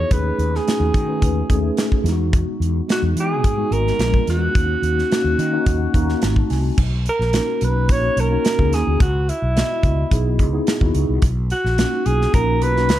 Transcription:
Already playing: tine electric piano B3 D#4 E4 F#4 G#4, alto saxophone C#5
0.11 fretless electric bass D#2, tine electric piano A3 C#4 D#4 G#4, alto saxophone B4, kick, closed hi-hat
0.38 fretless electric bass D#2, closed hi-hat
0.55 alto saxophone G#4, snare
0.66 tine electric piano A3 C#4 D#4 F#4, snare, closed hi-hat
0.80 fretless electric bass D#2
0.94 fretless electric bass D#3, kick, closed hi-hat
1.08 tine electric piano A3 C#4 D#4 B4
1.22 fretless electric bass D#2, kick, closed hi-hat
1.50 fretless electric bass D#2, tine electric piano A3 C#4 D#4 G#4, kick, closed hi-hat
1.77 snare, closed hi-hat
1.92 kick
2.04 fretless electric bass E2, tine electric piano G#3 B3 D#4 E4, snare, closed hi-hat
2.12 tine electric piano F#4
2.33 kick, closed hi-hat
2.60 fretless electric bass E2, closed hi-hat
2.88 tine electric piano G#3 B3 D#4 F#4, snare, closed hi-hat
2.92 alto saxophone F#4
3.02 fretless electric bass E2
3.16 fretless electric bass E3, closed hi-hat
3.20 alto saxophone G#4
3.44 fretless electric bass G#2, kick, closed hi-hat
3.57 tine electric piano G#3 B3 D#4 F#4
3.71 fretless electric bass G#1, alto saxophone A#4, closed hi-hat
3.87 snare
3.99 fretless electric bass A#1, tine electric piano G#3 B3 C#4 F4, snare, closed hi-hat
4.07 tine electric piano D4
4.14 kick
4.27 fretless electric bass E2, alto saxophone F#4, snare, closed hi-hat
4.55 fretless electric bass D#2, tine electric piano A#3 C#4 D#4 F#4, kick, closed hi-hat
4.82 fretless electric bass D#2, closed hi-hat
4.99 snare
5.11 tine electric piano A#3 C#4 D#4 F#4, snare, closed hi-hat
5.24 fretless electric bass D#2
5.38 fretless electric bass D#3, tine electric piano D#5, closed hi-hat
5.52 tine electric piano A#3 C#4 D#4 F#4
5.66 fretless electric bass D#2, tine electric piano F#5, kick, closed hi-hat
5.94 fretless electric bass D#2, tine electric piano A#3 C#4 D#4 F#4 A#5, kick, closed hi-hat
6.09 snare
6.22 fretless electric bass G#1, tine electric piano A3 C4 D#4 F4 A5, snare, closed hi-hat
6.30 tine electric piano F#4
6.36 kick
6.50 fretless electric bass C2, tine electric piano G#5, snare, open hi-hat
6.78 fretless electric bass B1, kick, crash
7.06 alto saxophone A#4, closed hi-hat
7.19 fretless electric bass A#1, snare
7.33 tine electric piano A#3 C#4 D#4 F#4, snare, closed hi-hat
7.61 fretless electric bass B1, alto saxophone B4, closed hi-hat
7.89 fretless electric bass A#1, tine electric piano A#3 C#4 D#4 F#4, alto saxophone C#5, kick, closed hi-hat
8.17 fretless electric bass B1, alto saxophone A#4, closed hi-hat
8.31 tine electric piano A#3 C#4 D#4 F#4
8.45 snare, closed hi-hat
8.58 fretless electric bass C#2, tine electric piano A#3 C#4 D#4 G#4, kick
8.73 fretless electric bass D#2, alto saxophone G#4, snare, closed hi-hat
8.87 fretless electric bass D2
9.00 fretless electric bass C#2, alto saxophone F#4, kick, closed hi-hat
9.29 alto saxophone E4, closed hi-hat
9.42 fretless electric bass B1
9.56 tine electric piano B3 E4 F#4 D#5, snare, closed hi-hat
9.83 fretless electric bass C#2, kick, closed hi-hat
10.11 fretless electric bass B1, tine electric piano B3 D#4 E4 G#4, kick, closed hi-hat
10.39 fretless electric bass C#2, kick, closed hi-hat
10.53 tine electric piano B3 D#4 E4 G#4
10.67 snare, closed hi-hat
10.81 fretless electric bass D#2, tine electric piano B3 D#4 E4 F#4, kick
10.95 fretless electric bass C#2, closed hi-hat
11.09 fretless electric bass C2
11.22 fretless electric bass B1, kick, closed hi-hat
11.50 alto saxophone F#4, closed hi-hat
11.64 fretless electric bass A#1, snare
11.78 tine electric piano A#3 C#4 D#4 F4, snare, closed hi-hat
11.86 tine electric piano F#4
12.06 fretless electric bass B1, alto saxophone G#4, closed hi-hat
12.21 snare
12.34 fretless electric bass A#1, tine electric piano A#3 C#4 D#4 F#4, alto saxophone A#4, kick, closed hi-hat
12.61 fretless electric bass B1, alto saxophone B4, closed hi-hat
12.76 tine electric piano A#3 C#4 D#4 F#4, snare
12.89 fretless electric bass C#2, snare, closed hi-hat

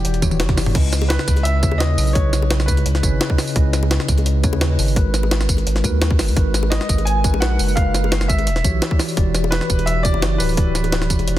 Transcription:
Already playing: tine electric piano E3 E4 F#4 G4 D5 F#5, grand piano G4
0.05 sub bass E1, closed hi-hat
0.14 closed hi-hat
0.21 tine electric piano E3 E4 F#4 G4 C#5, kick, closed hi-hat, high tom, tambourine
0.31 sub bass D1, high tom, tambourine
0.39 sub bass F#1, snare, closed hi-hat
0.48 tine electric piano E3 E4 F#4 G4 D5, kick, snare, mid tom
0.57 snare, open hi-hat, tambourine
0.66 mid tom
0.73 sub bass C#2, tine electric piano C#3 C#4 E4 B4 D#5, kick, closed hi-hat, crash
0.93 snare, closed hi-hat, tambourine
1.02 high bongo
1.09 grand piano B4, snare, closed hi-hat
1.19 snare
1.28 sub bass C#2, kick, closed hi-hat, tambourine
1.36 closed hi-hat, high bongo
1.43 grand piano E5, closed hi-hat
1.62 tine electric piano C#3 C#4 E4 B4 C#5, kick, closed hi-hat, tambourine
1.72 sub bass D#2, high bongo
1.78 grand piano D#5, snare, closed hi-hat
1.88 tine electric piano C#3 C#4 E4 B4 D#5
1.98 sub bass B1, open hi-hat, tambourine
2.07 tambourine
2.13 tine electric piano C#3 C#4 E4 B4 D#5, grand piano C#5, kick, closed hi-hat
2.33 snare, closed hi-hat, tambourine
2.42 high bongo
2.51 snare, closed hi-hat
2.60 snare, tambourine
2.66 sub bass C#2, grand piano B4, kick, closed hi-hat, tambourine
2.77 closed hi-hat, high bongo
2.86 sub bass C#2, closed hi-hat
2.95 snare, closed hi-hat
3.02 sub bass G#1, tine electric piano C#3 C#4 E4 B4 C#5, kick, closed hi-hat, tambourine
3.21 snare, closed hi-hat
3.29 tine electric piano C#3 C#4 E4 B4 D#5, kick
3.38 snare, open hi-hat, tambourine
3.47 tambourine
3.54 sub bass C#2, tine electric piano C#3 C#4 E4 B4 D#5, kick, closed hi-hat
3.73 snare, closed hi-hat, tambourine
3.83 high bongo
3.91 snare, closed hi-hat
4.00 snare
4.08 sub bass C#2, kick, closed hi-hat, tambourine
4.18 closed hi-hat, high bongo
4.26 closed hi-hat
4.43 tine electric piano C#3 C#4 E4 B4 C#5, kick, closed hi-hat, tambourine
4.53 sub bass D#2, high bongo
4.61 snare, closed hi-hat
4.69 tine electric piano C#3 C#4 E4 B4 D#5
4.79 sub bass G#1, open hi-hat, tambourine
4.88 tambourine
4.95 tine electric piano G#3 D#4 F#4 A#4 B4, kick, closed hi-hat
5.14 snare, closed hi-hat, tambourine
5.23 high bongo
5.31 snare, closed hi-hat
5.41 snare, tambourine
5.49 sub bass G#1, kick, closed hi-hat, tambourine
5.57 closed hi-hat, high bongo
5.67 sub bass G#1, closed hi-hat
5.76 snare, closed hi-hat
5.82 sub bass D#2, tine electric piano G#3 D#4 F#4 A#4 B4, kick, closed hi-hat, tambourine
6.02 snare, closed hi-hat
6.11 kick
6.19 sub bass F#1, snare, open hi-hat, tambourine
6.28 sub bass D#2, tambourine
6.35 sub bass G#1, tine electric piano G#3 D#4 F#4 A#4 B4, kick, closed hi-hat
6.54 snare, closed hi-hat, tambourine
6.63 high bongo
6.70 grand piano D#5, snare, closed hi-hat
6.81 snare
6.89 sub bass G#1, kick, closed hi-hat, tambourine
6.98 closed hi-hat, high bongo
7.05 grand piano G#5, closed hi-hat
7.23 tine electric piano G#3 D#4 F#4 A#4 B4, kick, closed hi-hat, tambourine
7.33 sub bass A#1, high bongo
7.40 grand piano F#5, snare, closed hi-hat
7.50 tine electric piano G#3 D#4 F#4 A#4 B4
7.59 sub bass F#1, open hi-hat, tambourine
7.68 tambourine
7.75 tine electric piano G#3 D#4 F#4 A#4 B4, grand piano F5, kick, closed hi-hat
7.94 snare, closed hi-hat, tambourine
8.04 high bongo
8.12 snare, closed hi-hat
8.21 snare, tambourine
8.28 sub bass G#1, grand piano E5, kick, closed hi-hat, tambourine
8.39 closed hi-hat, high bongo
8.47 sub bass E1, closed hi-hat
8.56 snare, closed hi-hat
8.64 sub bass B1, tine electric piano E3 E4 F#4 G4 C#5, kick, closed hi-hat, tambourine
8.82 snare, closed hi-hat
8.90 tine electric piano E3 E4 F#4 G4 D5, kick
8.99 snare, open hi-hat, tambourine
9.08 tambourine
9.15 sub bass E1, tine electric piano E3 E4 F#4 G4 D5, kick, closed hi-hat
9.35 snare, closed hi-hat, tambourine
9.44 high bongo
9.51 grand piano B4, snare, closed hi-hat
9.61 snare
9.70 sub bass E1, kick, closed hi-hat, tambourine
9.79 closed hi-hat, high bongo
9.86 grand piano E5, closed hi-hat
10.03 tine electric piano E3 E4 F#4 G4 C#5, grand piano D5, kick, closed hi-hat, tambourine
10.14 sub bass F#1, high bongo
10.22 snare, closed hi-hat
10.31 tine electric piano E3 E4 F#4 G4 D5
10.38 sub bass D1, grand piano B4, open hi-hat, tambourine
10.49 tambourine
10.56 tine electric piano E3 E4 F#4 G4 D5, kick, closed hi-hat
10.75 snare, closed hi-hat, tambourine
10.84 closed hi-hat, high bongo
10.92 snare, closed hi-hat
11.02 snare, closed hi-hat
11.10 sub bass E1, kick, closed hi-hat, tambourine
11.19 closed hi-hat, high bongo
11.28 sub bass E1, closed hi-hat

